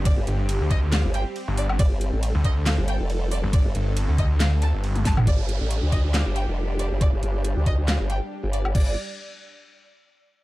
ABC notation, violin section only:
X:1
M:4/4
L:1/8
Q:"Swing 16ths" 1/4=138
K:Cdor
V:1 name="Violin section"
d z2 e f g z d | d z2 e f g z d | d z2 e f a z a | d z2 e f g z d |
d z2 e f g z d | d z6 z |]